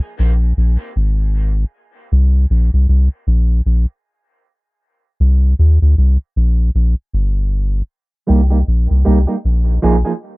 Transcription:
0.19 0.53 A#1 medium
0.57 0.77 A#1 medium
0.96 1.65 G#1 medium
2.12 2.46 C2 loud
2.50 2.70 A#1 loud
2.73 2.87 C2 medium
2.89 3.09 C2 medium
3.27 3.61 A#1 loud
3.66 3.86 A#1 medium
5.20 5.54 C2 medium
5.59 5.79 D#2 medium
5.82 5.95 D2 medium
5.98 6.17 C2 medium
6.36 6.70 A#1 medium
6.75 6.95 A#1 medium
7.13 7.82 G1 medium
8.27 8.63 C2 loud
8.27 8.40 G3 medium
8.27 8.40 A#3 medium
8.27 8.40 D#4 medium
8.27 8.41 G4 medium
8.50 8.58 G3 soft
8.50 8.58 A#3 soft
8.50 8.58 D#4 medium
8.50 8.57 G4 medium
8.68 8.88 A#1 loud
8.90 9.04 C2 medium
9.05 9.26 C2 medium
9.05 9.17 G3 medium
9.05 9.17 A#3 medium
9.05 9.18 D#4 medium
9.05 9.18 G4 medium
9.27 9.35 G3 soft
9.27 9.35 A#3 soft
9.27 9.34 D#4 soft
9.27 9.34 G4 medium
9.45 9.79 A#1 medium
9.82 10.04 A#1 medium
9.82 9.95 F3 medium
9.82 9.95 A#3 medium
9.82 9.95 D#4 medium
9.82 9.95 G#4 loud
10.05 10.12 F3 medium
10.05 10.12 A#3 soft
10.05 10.12 D#4 soft
10.05 10.12 G#4 medium

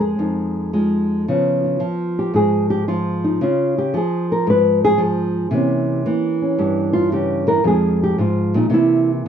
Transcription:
0.00 0.17 F2 medium
0.00 0.73 G#3 medium
0.00 0.71 G#4 medium
0.19 1.26 F2 medium
0.19 1.25 D#4 soft
0.73 1.29 G#3 medium
0.73 1.30 F4 soft
1.28 1.81 C#3 medium
1.28 1.79 F3 soft
1.28 3.40 B3 soft
1.28 1.64 F4 soft
1.64 2.87 F4 soft
1.80 2.87 F3 medium
2.19 2.34 G4 medium
2.34 3.38 G#2 medium
2.34 2.70 G#4 medium
2.70 2.87 G4 medium
2.88 3.39 F3 medium
2.88 3.24 F4 medium
3.24 3.41 D#4 medium
3.41 3.94 C#3 medium
3.41 3.78 F4 medium
3.78 3.94 G4 medium
3.94 4.97 F3 medium
3.94 4.31 G#4 medium
4.32 4.47 A#4 medium
4.47 5.50 G#2 medium
4.47 4.84 B4 loud
4.84 5.00 G#4 loud
4.98 5.49 F3 medium
4.98 5.49 F4 soft
5.51 6.04 C3 medium
5.51 6.05 E3 soft
5.51 6.05 A#3 medium
5.51 6.41 C#4 soft
5.51 6.59 G4 soft
6.06 7.46 E3 medium
6.06 7.63 A#3 soft
6.42 7.63 C#4 soft
6.59 7.63 G2 medium
6.59 6.93 G4 soft
6.93 7.11 F4 loud
7.12 7.48 C#3 medium
7.12 7.47 G4 medium
7.47 7.64 E3 medium
7.47 7.65 A#4 loud
7.64 8.18 F2 medium
7.64 8.69 F3 soft
7.64 8.71 G#3 soft
7.64 8.55 D#4 soft
7.64 8.02 G#4 medium
8.03 8.19 G4 medium
8.18 8.54 G#2 medium
8.18 8.56 F4 medium
8.54 8.69 A#2 medium
8.54 8.73 D#4 medium
8.70 9.25 C3 medium
8.70 9.28 E3 soft
8.70 9.28 A#3 soft
8.74 9.09 E4 loud

